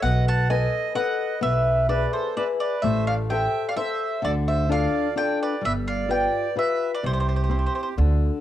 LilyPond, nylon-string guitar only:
\new Staff \with { instrumentName = "Nylon-string guitar" } { \time 3/4 \key c \major \tempo 4 = 129 b4 <a' b' dis''>4 <a' b' dis''>4 | b4 <gis' b' e''>4 <gis' b' e''>4 | a4 <g' a' c''>4 <g' a' c''>4 | d4 <d' f' a'>4 <d' f' a'>4 |
g4 <f' g' b'>4 <f' g' b'>4 | c4 <c' e' g'>4 d4 | }